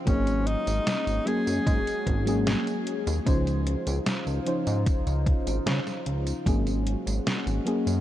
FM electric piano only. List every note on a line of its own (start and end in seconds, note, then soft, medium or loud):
0.05 1.21 F#3 medium
0.05 1.22 A#3 medium
0.05 1.22 C#4 medium
0.05 1.23 G#4 medium
1.25 2.22 F#3 medium
1.25 2.23 A#3 medium
1.25 2.23 C#4 medium
1.25 2.24 G#4 loud
2.25 3.21 F#3 loud
2.25 3.22 A#3 medium
2.25 3.22 C#4 medium
2.25 3.23 G#4 loud
3.25 4.41 F3 medium
3.25 4.42 C#4 medium
3.25 4.42 D#4 medium
3.25 4.43 C5 medium
4.46 4.62 F3 medium
4.46 4.63 C#4 medium
4.46 4.63 D#4 medium
4.46 4.63 C5 medium
6.45 7.61 F#3 medium
6.45 7.62 A#3 medium
6.45 7.62 C#4 medium
6.45 7.63 G#4 medium
7.65 8.01 F#3 medium
7.65 8.01 A#3 medium
7.65 8.01 C#4 medium
7.65 8.01 G#4 loud